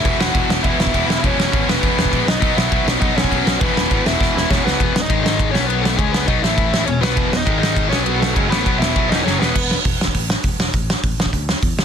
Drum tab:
CC |x---x---x---x---|x---x---x---x---|x---x---x---x---|x---x-----------|
RD |----------------|----------------|----------------|----------------|
HH |----------------|----------------|----------------|----------------|
SD |--o---o---o---o-|--o---o---o---o-|--o---o---o---o-|--o---o-o-o-o-o-|
BD |o---o---o--oo---|o---o---o--oo---|o---o---o--oo---|o---o---o---o---|

CC |----------------|----------------|----------------|----------------|
RD |x---x---x---x---|x---x---x---x---|x---x---x---x---|x---x---x-------|
HH |----------------|----------------|----------------|----------------|
SD |--o---o---o---o-|--o---o---o---o-|--o---o---o---o-|--o---o---o-o-o-|
BD |o---o---o-------|o---o---o-------|o---o---o-------|o---o---o-------|

CC |x---------------|----------------|
RD |----------------|----------------|
HH |----o---o---o---|o---o---o---o---|
SD |--o---o---o---o-|--o---o---o---o-|
BD |o---o--oo---o---|o---o--oo---o---|